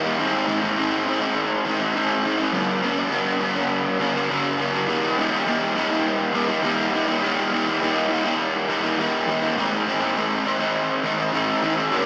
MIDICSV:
0, 0, Header, 1, 2, 480
1, 0, Start_track
1, 0, Tempo, 586510
1, 152, Time_signature, 4, 2, 24, 8
1, 9868, End_track
2, 0, Start_track
2, 0, Title_t, "Overdriven electric guitar"
2, 0, Program_c, 0, 29
2, 0, Note_on_c, 0, 52, 75
2, 33, Note_on_c, 0, 64, 67
2, 48, Note_on_c, 0, 59, 65
2, 55, Note_on_c, 0, 56, 55
2, 137, Note_off_c, 0, 52, 0
2, 138, Note_off_c, 0, 64, 0
2, 143, Note_on_c, 0, 45, 95
2, 146, Note_off_c, 0, 59, 0
2, 150, Note_off_c, 0, 56, 0
2, 152, Note_on_c, 0, 52, 85
2, 160, Note_on_c, 0, 57, 103
2, 167, Note_on_c, 0, 61, 101
2, 170, Note_on_c, 0, 64, 103
2, 368, Note_off_c, 0, 52, 0
2, 376, Note_off_c, 0, 57, 0
2, 378, Note_on_c, 0, 52, 67
2, 385, Note_off_c, 0, 61, 0
2, 386, Note_on_c, 0, 57, 75
2, 395, Note_on_c, 0, 61, 86
2, 396, Note_off_c, 0, 64, 0
2, 406, Note_on_c, 0, 64, 74
2, 495, Note_off_c, 0, 64, 0
2, 505, Note_on_c, 0, 64, 73
2, 512, Note_off_c, 0, 61, 0
2, 522, Note_off_c, 0, 57, 0
2, 522, Note_on_c, 0, 61, 60
2, 532, Note_on_c, 0, 57, 61
2, 615, Note_off_c, 0, 45, 0
2, 624, Note_off_c, 0, 52, 0
2, 625, Note_on_c, 0, 45, 94
2, 629, Note_off_c, 0, 57, 0
2, 634, Note_off_c, 0, 61, 0
2, 634, Note_on_c, 0, 52, 94
2, 639, Note_on_c, 0, 57, 91
2, 642, Note_off_c, 0, 64, 0
2, 644, Note_on_c, 0, 61, 109
2, 652, Note_on_c, 0, 64, 105
2, 854, Note_off_c, 0, 52, 0
2, 864, Note_on_c, 0, 52, 75
2, 867, Note_off_c, 0, 57, 0
2, 875, Note_off_c, 0, 61, 0
2, 877, Note_on_c, 0, 57, 78
2, 878, Note_off_c, 0, 64, 0
2, 884, Note_on_c, 0, 61, 74
2, 888, Note_on_c, 0, 64, 89
2, 972, Note_off_c, 0, 64, 0
2, 982, Note_on_c, 0, 64, 80
2, 986, Note_off_c, 0, 61, 0
2, 996, Note_on_c, 0, 61, 77
2, 998, Note_off_c, 0, 57, 0
2, 1008, Note_on_c, 0, 57, 55
2, 1109, Note_off_c, 0, 45, 0
2, 1229, Note_off_c, 0, 52, 0
2, 1346, Note_on_c, 0, 52, 76
2, 1348, Note_off_c, 0, 57, 0
2, 1357, Note_off_c, 0, 61, 0
2, 1358, Note_on_c, 0, 57, 80
2, 1364, Note_off_c, 0, 64, 0
2, 1367, Note_on_c, 0, 61, 73
2, 1374, Note_on_c, 0, 64, 93
2, 1460, Note_off_c, 0, 64, 0
2, 1469, Note_on_c, 0, 64, 84
2, 1473, Note_off_c, 0, 61, 0
2, 1482, Note_on_c, 0, 61, 70
2, 1483, Note_off_c, 0, 57, 0
2, 1493, Note_on_c, 0, 57, 67
2, 1583, Note_off_c, 0, 52, 0
2, 1587, Note_on_c, 0, 45, 84
2, 1593, Note_on_c, 0, 52, 88
2, 1594, Note_off_c, 0, 57, 0
2, 1596, Note_off_c, 0, 61, 0
2, 1603, Note_off_c, 0, 64, 0
2, 1604, Note_on_c, 0, 57, 91
2, 1606, Note_on_c, 0, 61, 87
2, 1613, Note_on_c, 0, 64, 89
2, 1814, Note_off_c, 0, 52, 0
2, 1822, Note_off_c, 0, 57, 0
2, 1824, Note_on_c, 0, 52, 71
2, 1832, Note_off_c, 0, 61, 0
2, 1832, Note_on_c, 0, 57, 82
2, 1842, Note_on_c, 0, 61, 73
2, 1843, Note_off_c, 0, 64, 0
2, 1853, Note_on_c, 0, 64, 74
2, 1932, Note_off_c, 0, 64, 0
2, 1942, Note_on_c, 0, 64, 77
2, 1944, Note_off_c, 0, 61, 0
2, 1954, Note_on_c, 0, 61, 65
2, 1956, Note_off_c, 0, 57, 0
2, 1966, Note_on_c, 0, 57, 60
2, 2053, Note_off_c, 0, 64, 0
2, 2054, Note_off_c, 0, 52, 0
2, 2055, Note_off_c, 0, 45, 0
2, 2059, Note_off_c, 0, 61, 0
2, 2062, Note_on_c, 0, 43, 97
2, 2065, Note_off_c, 0, 57, 0
2, 2070, Note_on_c, 0, 50, 85
2, 2075, Note_on_c, 0, 55, 93
2, 2083, Note_on_c, 0, 59, 112
2, 2086, Note_on_c, 0, 62, 105
2, 2294, Note_off_c, 0, 50, 0
2, 2304, Note_on_c, 0, 50, 72
2, 2306, Note_off_c, 0, 55, 0
2, 2316, Note_on_c, 0, 55, 76
2, 2318, Note_off_c, 0, 59, 0
2, 2320, Note_off_c, 0, 62, 0
2, 2321, Note_on_c, 0, 59, 79
2, 2330, Note_on_c, 0, 62, 84
2, 2413, Note_off_c, 0, 62, 0
2, 2423, Note_on_c, 0, 62, 72
2, 2431, Note_off_c, 0, 59, 0
2, 2434, Note_on_c, 0, 59, 61
2, 2437, Note_off_c, 0, 55, 0
2, 2447, Note_on_c, 0, 55, 61
2, 2527, Note_off_c, 0, 43, 0
2, 2535, Note_off_c, 0, 50, 0
2, 2537, Note_on_c, 0, 43, 89
2, 2544, Note_off_c, 0, 55, 0
2, 2545, Note_on_c, 0, 50, 89
2, 2553, Note_off_c, 0, 59, 0
2, 2553, Note_on_c, 0, 55, 91
2, 2554, Note_off_c, 0, 62, 0
2, 2557, Note_on_c, 0, 59, 88
2, 2563, Note_on_c, 0, 62, 104
2, 2776, Note_off_c, 0, 50, 0
2, 2781, Note_off_c, 0, 55, 0
2, 2785, Note_on_c, 0, 50, 78
2, 2791, Note_on_c, 0, 55, 76
2, 2798, Note_off_c, 0, 62, 0
2, 2800, Note_off_c, 0, 59, 0
2, 2804, Note_on_c, 0, 59, 83
2, 2808, Note_on_c, 0, 62, 81
2, 2894, Note_off_c, 0, 62, 0
2, 2904, Note_on_c, 0, 62, 83
2, 2918, Note_off_c, 0, 59, 0
2, 2921, Note_on_c, 0, 59, 64
2, 2922, Note_off_c, 0, 55, 0
2, 2932, Note_on_c, 0, 55, 67
2, 3024, Note_off_c, 0, 43, 0
2, 3149, Note_off_c, 0, 50, 0
2, 3259, Note_off_c, 0, 55, 0
2, 3259, Note_on_c, 0, 50, 74
2, 3268, Note_on_c, 0, 55, 76
2, 3276, Note_off_c, 0, 62, 0
2, 3277, Note_off_c, 0, 59, 0
2, 3280, Note_on_c, 0, 59, 74
2, 3286, Note_on_c, 0, 62, 83
2, 3381, Note_off_c, 0, 62, 0
2, 3391, Note_on_c, 0, 62, 72
2, 3399, Note_off_c, 0, 59, 0
2, 3402, Note_on_c, 0, 59, 70
2, 3406, Note_off_c, 0, 55, 0
2, 3416, Note_on_c, 0, 55, 67
2, 3508, Note_on_c, 0, 43, 80
2, 3510, Note_off_c, 0, 50, 0
2, 3513, Note_off_c, 0, 55, 0
2, 3520, Note_on_c, 0, 50, 86
2, 3523, Note_on_c, 0, 55, 86
2, 3525, Note_off_c, 0, 62, 0
2, 3527, Note_off_c, 0, 59, 0
2, 3530, Note_on_c, 0, 59, 88
2, 3535, Note_on_c, 0, 62, 95
2, 3736, Note_off_c, 0, 50, 0
2, 3746, Note_on_c, 0, 50, 75
2, 3747, Note_off_c, 0, 55, 0
2, 3757, Note_on_c, 0, 55, 72
2, 3763, Note_off_c, 0, 59, 0
2, 3763, Note_off_c, 0, 62, 0
2, 3766, Note_on_c, 0, 59, 86
2, 3772, Note_on_c, 0, 62, 80
2, 3861, Note_off_c, 0, 62, 0
2, 3871, Note_on_c, 0, 62, 74
2, 3885, Note_off_c, 0, 59, 0
2, 3888, Note_on_c, 0, 59, 64
2, 3889, Note_off_c, 0, 55, 0
2, 3899, Note_on_c, 0, 55, 56
2, 3974, Note_off_c, 0, 50, 0
2, 3975, Note_off_c, 0, 43, 0
2, 3977, Note_off_c, 0, 62, 0
2, 3985, Note_on_c, 0, 52, 101
2, 3991, Note_off_c, 0, 55, 0
2, 3994, Note_on_c, 0, 56, 94
2, 4001, Note_off_c, 0, 59, 0
2, 4005, Note_on_c, 0, 59, 94
2, 4009, Note_on_c, 0, 64, 95
2, 4230, Note_off_c, 0, 52, 0
2, 4234, Note_on_c, 0, 52, 69
2, 4240, Note_off_c, 0, 56, 0
2, 4243, Note_on_c, 0, 56, 79
2, 4246, Note_off_c, 0, 59, 0
2, 4249, Note_on_c, 0, 59, 84
2, 4256, Note_off_c, 0, 64, 0
2, 4260, Note_on_c, 0, 64, 90
2, 4350, Note_off_c, 0, 64, 0
2, 4353, Note_on_c, 0, 64, 69
2, 4366, Note_off_c, 0, 59, 0
2, 4369, Note_on_c, 0, 59, 65
2, 4374, Note_off_c, 0, 56, 0
2, 4378, Note_on_c, 0, 56, 52
2, 4464, Note_off_c, 0, 52, 0
2, 4467, Note_on_c, 0, 52, 83
2, 4474, Note_off_c, 0, 56, 0
2, 4478, Note_on_c, 0, 56, 89
2, 4481, Note_off_c, 0, 59, 0
2, 4484, Note_on_c, 0, 59, 100
2, 4489, Note_off_c, 0, 64, 0
2, 4492, Note_on_c, 0, 64, 95
2, 4707, Note_off_c, 0, 52, 0
2, 4710, Note_on_c, 0, 52, 63
2, 4714, Note_off_c, 0, 56, 0
2, 4717, Note_on_c, 0, 56, 78
2, 4724, Note_off_c, 0, 59, 0
2, 4727, Note_on_c, 0, 59, 88
2, 4728, Note_off_c, 0, 64, 0
2, 4732, Note_on_c, 0, 64, 85
2, 4831, Note_off_c, 0, 64, 0
2, 4834, Note_on_c, 0, 64, 77
2, 4836, Note_off_c, 0, 59, 0
2, 4846, Note_on_c, 0, 59, 68
2, 4856, Note_off_c, 0, 56, 0
2, 4859, Note_on_c, 0, 56, 56
2, 5173, Note_off_c, 0, 52, 0
2, 5176, Note_on_c, 0, 52, 73
2, 5188, Note_off_c, 0, 56, 0
2, 5188, Note_off_c, 0, 59, 0
2, 5192, Note_on_c, 0, 56, 74
2, 5197, Note_on_c, 0, 59, 74
2, 5200, Note_off_c, 0, 64, 0
2, 5203, Note_on_c, 0, 64, 73
2, 5301, Note_off_c, 0, 64, 0
2, 5304, Note_on_c, 0, 64, 78
2, 5310, Note_off_c, 0, 59, 0
2, 5320, Note_on_c, 0, 59, 69
2, 5328, Note_off_c, 0, 56, 0
2, 5331, Note_on_c, 0, 56, 61
2, 5415, Note_off_c, 0, 52, 0
2, 5418, Note_on_c, 0, 52, 88
2, 5425, Note_off_c, 0, 56, 0
2, 5428, Note_on_c, 0, 56, 92
2, 5429, Note_off_c, 0, 59, 0
2, 5439, Note_on_c, 0, 59, 97
2, 5447, Note_off_c, 0, 64, 0
2, 5450, Note_on_c, 0, 64, 94
2, 5659, Note_off_c, 0, 52, 0
2, 5662, Note_on_c, 0, 52, 74
2, 5670, Note_off_c, 0, 59, 0
2, 5671, Note_off_c, 0, 56, 0
2, 5674, Note_on_c, 0, 56, 73
2, 5679, Note_on_c, 0, 59, 74
2, 5688, Note_off_c, 0, 64, 0
2, 5691, Note_on_c, 0, 64, 81
2, 5783, Note_off_c, 0, 64, 0
2, 5786, Note_on_c, 0, 64, 79
2, 5788, Note_off_c, 0, 59, 0
2, 5798, Note_on_c, 0, 59, 66
2, 5809, Note_off_c, 0, 56, 0
2, 5812, Note_on_c, 0, 56, 56
2, 5905, Note_off_c, 0, 52, 0
2, 5908, Note_on_c, 0, 52, 84
2, 5916, Note_off_c, 0, 56, 0
2, 5916, Note_off_c, 0, 59, 0
2, 5919, Note_on_c, 0, 56, 99
2, 5926, Note_on_c, 0, 59, 90
2, 5932, Note_off_c, 0, 64, 0
2, 5935, Note_on_c, 0, 64, 101
2, 6140, Note_off_c, 0, 52, 0
2, 6143, Note_on_c, 0, 52, 73
2, 6152, Note_off_c, 0, 59, 0
2, 6155, Note_off_c, 0, 56, 0
2, 6158, Note_on_c, 0, 56, 83
2, 6162, Note_on_c, 0, 59, 88
2, 6171, Note_off_c, 0, 64, 0
2, 6174, Note_on_c, 0, 64, 83
2, 6264, Note_off_c, 0, 64, 0
2, 6268, Note_on_c, 0, 64, 83
2, 6269, Note_off_c, 0, 59, 0
2, 6279, Note_on_c, 0, 59, 65
2, 6290, Note_off_c, 0, 56, 0
2, 6293, Note_on_c, 0, 56, 63
2, 6386, Note_off_c, 0, 52, 0
2, 6389, Note_on_c, 0, 52, 93
2, 6395, Note_off_c, 0, 56, 0
2, 6395, Note_off_c, 0, 59, 0
2, 6398, Note_on_c, 0, 56, 88
2, 6405, Note_on_c, 0, 59, 96
2, 6409, Note_off_c, 0, 64, 0
2, 6413, Note_on_c, 0, 64, 112
2, 6624, Note_off_c, 0, 52, 0
2, 6627, Note_on_c, 0, 52, 82
2, 6632, Note_off_c, 0, 56, 0
2, 6633, Note_off_c, 0, 59, 0
2, 6635, Note_on_c, 0, 56, 80
2, 6643, Note_on_c, 0, 59, 78
2, 6647, Note_off_c, 0, 64, 0
2, 6650, Note_on_c, 0, 64, 88
2, 6739, Note_off_c, 0, 64, 0
2, 6749, Note_on_c, 0, 64, 82
2, 6756, Note_off_c, 0, 59, 0
2, 6766, Note_on_c, 0, 59, 64
2, 6767, Note_off_c, 0, 56, 0
2, 6777, Note_on_c, 0, 56, 60
2, 6988, Note_off_c, 0, 52, 0
2, 7102, Note_on_c, 0, 52, 68
2, 7105, Note_off_c, 0, 56, 0
2, 7109, Note_off_c, 0, 59, 0
2, 7115, Note_on_c, 0, 56, 68
2, 7118, Note_off_c, 0, 64, 0
2, 7119, Note_on_c, 0, 59, 74
2, 7128, Note_on_c, 0, 64, 69
2, 7212, Note_off_c, 0, 64, 0
2, 7222, Note_on_c, 0, 64, 74
2, 7224, Note_off_c, 0, 59, 0
2, 7234, Note_on_c, 0, 59, 69
2, 7238, Note_off_c, 0, 56, 0
2, 7247, Note_on_c, 0, 56, 62
2, 7334, Note_off_c, 0, 52, 0
2, 7343, Note_on_c, 0, 52, 84
2, 7347, Note_off_c, 0, 56, 0
2, 7356, Note_off_c, 0, 59, 0
2, 7357, Note_on_c, 0, 56, 91
2, 7361, Note_off_c, 0, 64, 0
2, 7366, Note_on_c, 0, 59, 88
2, 7370, Note_on_c, 0, 64, 93
2, 7572, Note_off_c, 0, 52, 0
2, 7582, Note_on_c, 0, 52, 83
2, 7583, Note_off_c, 0, 56, 0
2, 7592, Note_on_c, 0, 56, 79
2, 7593, Note_off_c, 0, 59, 0
2, 7597, Note_off_c, 0, 64, 0
2, 7603, Note_on_c, 0, 59, 80
2, 7607, Note_on_c, 0, 64, 77
2, 7695, Note_off_c, 0, 64, 0
2, 7705, Note_on_c, 0, 64, 75
2, 7708, Note_off_c, 0, 59, 0
2, 7717, Note_on_c, 0, 59, 64
2, 7722, Note_off_c, 0, 56, 0
2, 7732, Note_on_c, 0, 56, 59
2, 7812, Note_off_c, 0, 52, 0
2, 7813, Note_off_c, 0, 64, 0
2, 7819, Note_off_c, 0, 59, 0
2, 7820, Note_on_c, 0, 45, 92
2, 7827, Note_off_c, 0, 56, 0
2, 7830, Note_on_c, 0, 52, 95
2, 7838, Note_on_c, 0, 57, 92
2, 7845, Note_on_c, 0, 61, 94
2, 7846, Note_on_c, 0, 64, 105
2, 8060, Note_off_c, 0, 52, 0
2, 8069, Note_off_c, 0, 57, 0
2, 8070, Note_on_c, 0, 52, 76
2, 8077, Note_off_c, 0, 61, 0
2, 8079, Note_on_c, 0, 57, 83
2, 8084, Note_off_c, 0, 64, 0
2, 8087, Note_on_c, 0, 61, 94
2, 8093, Note_on_c, 0, 64, 83
2, 8177, Note_off_c, 0, 64, 0
2, 8187, Note_on_c, 0, 64, 74
2, 8193, Note_off_c, 0, 61, 0
2, 8203, Note_on_c, 0, 61, 64
2, 8205, Note_off_c, 0, 57, 0
2, 8215, Note_on_c, 0, 57, 58
2, 8295, Note_off_c, 0, 45, 0
2, 8304, Note_off_c, 0, 52, 0
2, 8305, Note_on_c, 0, 45, 84
2, 8310, Note_off_c, 0, 57, 0
2, 8314, Note_on_c, 0, 52, 88
2, 8319, Note_off_c, 0, 61, 0
2, 8320, Note_on_c, 0, 57, 89
2, 8321, Note_off_c, 0, 64, 0
2, 8329, Note_on_c, 0, 61, 91
2, 8331, Note_on_c, 0, 64, 88
2, 8537, Note_off_c, 0, 52, 0
2, 8546, Note_off_c, 0, 57, 0
2, 8547, Note_on_c, 0, 52, 78
2, 8556, Note_on_c, 0, 57, 77
2, 8557, Note_off_c, 0, 61, 0
2, 8559, Note_off_c, 0, 64, 0
2, 8567, Note_on_c, 0, 61, 83
2, 8569, Note_on_c, 0, 64, 84
2, 8656, Note_off_c, 0, 64, 0
2, 8665, Note_on_c, 0, 64, 74
2, 8669, Note_off_c, 0, 61, 0
2, 8679, Note_off_c, 0, 57, 0
2, 8679, Note_on_c, 0, 61, 68
2, 8689, Note_on_c, 0, 57, 69
2, 8789, Note_off_c, 0, 45, 0
2, 8910, Note_off_c, 0, 52, 0
2, 9026, Note_on_c, 0, 52, 78
2, 9028, Note_off_c, 0, 57, 0
2, 9033, Note_off_c, 0, 61, 0
2, 9038, Note_on_c, 0, 57, 70
2, 9041, Note_off_c, 0, 64, 0
2, 9042, Note_on_c, 0, 61, 74
2, 9051, Note_on_c, 0, 64, 77
2, 9136, Note_off_c, 0, 64, 0
2, 9146, Note_on_c, 0, 64, 73
2, 9149, Note_off_c, 0, 61, 0
2, 9158, Note_on_c, 0, 61, 62
2, 9163, Note_off_c, 0, 57, 0
2, 9172, Note_on_c, 0, 57, 63
2, 9259, Note_off_c, 0, 52, 0
2, 9265, Note_on_c, 0, 45, 88
2, 9266, Note_off_c, 0, 57, 0
2, 9269, Note_on_c, 0, 52, 77
2, 9274, Note_off_c, 0, 61, 0
2, 9276, Note_on_c, 0, 57, 105
2, 9281, Note_off_c, 0, 64, 0
2, 9284, Note_on_c, 0, 61, 95
2, 9291, Note_on_c, 0, 64, 94
2, 9497, Note_off_c, 0, 52, 0
2, 9506, Note_off_c, 0, 57, 0
2, 9507, Note_on_c, 0, 52, 78
2, 9516, Note_off_c, 0, 61, 0
2, 9516, Note_on_c, 0, 57, 76
2, 9522, Note_off_c, 0, 64, 0
2, 9525, Note_on_c, 0, 61, 73
2, 9532, Note_on_c, 0, 64, 82
2, 9616, Note_off_c, 0, 64, 0
2, 9626, Note_on_c, 0, 64, 67
2, 9632, Note_off_c, 0, 61, 0
2, 9641, Note_off_c, 0, 57, 0
2, 9641, Note_on_c, 0, 61, 69
2, 9650, Note_on_c, 0, 57, 58
2, 9736, Note_off_c, 0, 45, 0
2, 9736, Note_off_c, 0, 52, 0
2, 9736, Note_off_c, 0, 64, 0
2, 9740, Note_on_c, 0, 43, 97
2, 9744, Note_off_c, 0, 61, 0
2, 9748, Note_off_c, 0, 57, 0
2, 9751, Note_on_c, 0, 50, 84
2, 9755, Note_on_c, 0, 55, 98
2, 9765, Note_on_c, 0, 59, 101
2, 9768, Note_on_c, 0, 62, 102
2, 9868, Note_off_c, 0, 43, 0
2, 9868, Note_off_c, 0, 50, 0
2, 9868, Note_off_c, 0, 55, 0
2, 9868, Note_off_c, 0, 59, 0
2, 9868, Note_off_c, 0, 62, 0
2, 9868, End_track
0, 0, End_of_file